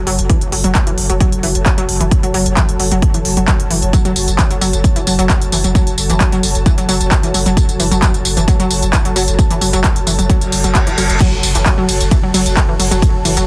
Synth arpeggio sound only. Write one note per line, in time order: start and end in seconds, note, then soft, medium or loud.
0.07 0.14 F#3 loud
0.30 0.34 E3 medium
0.52 0.60 F#3 medium
0.64 0.71 F#3 loud
0.87 0.91 E3 medium
1.10 1.16 F#3 medium
1.21 1.28 F#3 loud
1.43 1.48 E3 medium
1.66 1.73 F#3 medium
1.78 1.84 F#3 loud
2.01 2.04 E3 medium
2.23 2.30 F#3 medium
2.34 2.41 F#3 loud
2.57 2.61 E3 medium
2.80 2.87 F#3 medium
2.92 2.98 F#3 loud
3.14 3.18 E3 medium
3.37 3.44 F#3 medium
3.48 3.55 F#3 loud
3.71 3.75 E3 medium
3.93 4.00 F#3 medium
4.05 4.12 F#3 loud
4.39 4.43 E3 medium
4.51 4.57 F#3 medium
4.61 4.69 F#3 loud
4.96 5.00 E3 medium
5.07 5.14 F#3 medium
5.19 5.25 F#3 loud
5.52 5.57 E3 medium
5.64 5.71 F#3 medium
5.75 5.82 F#3 loud
6.10 6.14 E3 medium
6.20 6.28 F#3 medium
6.32 6.39 F#3 loud
6.66 6.70 E3 medium
6.78 6.84 F#3 medium
6.89 6.96 F#3 loud
7.23 7.27 E3 medium
7.34 7.41 F#3 medium
7.46 7.53 F#3 loud
7.80 7.84 E3 medium
7.91 7.98 F#3 medium
8.02 8.09 F#3 loud
8.37 8.41 E3 medium
8.48 8.55 F#3 medium
8.60 8.66 F#3 loud
8.93 8.97 E3 medium
9.05 9.12 F#3 medium
9.16 9.23 F#3 loud
9.50 9.54 E3 medium
9.61 9.69 F#3 medium
9.73 9.80 F#3 loud
10.07 10.11 E3 medium
10.19 10.25 F#3 medium
10.30 10.37 F#3 loud
10.64 10.71 F#3 medium
10.75 10.82 F#4 loud
10.87 10.91 E3 medium
10.98 11.08 F#3 medium
11.20 11.28 F#3 loud
11.55 11.59 E3 medium
11.66 11.73 F#3 medium
11.78 11.84 F#3 loud
12.11 12.16 E3 medium
12.23 12.30 F#3 medium
12.34 12.41 F#3 loud
12.69 12.73 E3 medium
12.79 12.87 F#3 medium
12.91 12.98 F#3 loud
13.25 13.29 E3 medium
13.37 13.43 F#3 medium